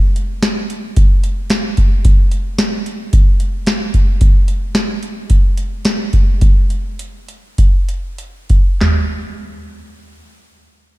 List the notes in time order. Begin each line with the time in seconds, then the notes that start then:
0.16 closed hi-hat
0.43 snare, closed hi-hat
0.70 closed hi-hat
0.96 kick, closed hi-hat
1.24 closed hi-hat
1.50 snare, closed hi-hat
1.77 kick, closed hi-hat
2.05 kick, closed hi-hat
2.31 closed hi-hat
2.59 snare, closed hi-hat
2.86 closed hi-hat
3.13 kick, closed hi-hat
3.40 closed hi-hat
3.67 snare, closed hi-hat
3.94 kick, closed hi-hat
4.21 kick, closed hi-hat
4.48 closed hi-hat
4.75 snare, closed hi-hat
5.03 closed hi-hat
5.30 kick, closed hi-hat
5.57 closed hi-hat
5.85 snare, closed hi-hat
6.13 kick, closed hi-hat
6.41 kick, closed hi-hat
6.70 closed hi-hat
6.99 closed hi-hat
7.28 closed hi-hat
7.58 kick, closed hi-hat
7.89 closed hi-hat
8.18 closed hi-hat
8.49 kick, closed hi-hat
8.81 snare, clap, floor tom